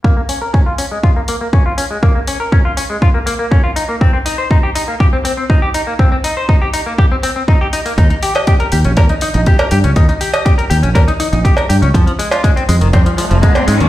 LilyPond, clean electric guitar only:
\new Staff \with { instrumentName = "Clean electric guitar" } { \time 4/4 \key bes \dorian \tempo 4 = 121 bes16 bes16 des'16 bes'16 des'16 f'16 des'16 aes16 f'16 bes16 bes16 bes16 des'16 f'16 des'16 aes16 | bes16 bes16 des'16 bes'16 des'16 f'16 des'16 aes16 f'16 bes16 bes16 bes16 des'16 f'16 ees'16 bes16 | c'16 c'16 ees'16 c''16 ees'16 g'16 ees'16 bes16 g'16 c'16 c'16 c'16 ees'16 g'16 ees'16 bes16 | c'16 c'16 ees'16 c''16 ees'16 g'16 ees'16 bes16 g'16 c'16 c'16 c'16 ees'16 g'16 ees'16 bes16 |
ees'16 ees'16 g'16 ees''16 g'16 bes'16 g'16 des'16 bes'16 ees'16 ees'16 ees'16 g'16 bes'16 g'16 des'16 | ees'16 ees'16 g'16 ees''16 g'16 bes'16 g'16 des'16 bes'16 ees'16 ees'16 ees'16 g'16 bes'16 g'16 des'16 | f16 f16 aes16 f'16 aes16 c'16 aes16 ees16 c'16 f16 f16 f16 aes16 c'16 aes16 ees16 | }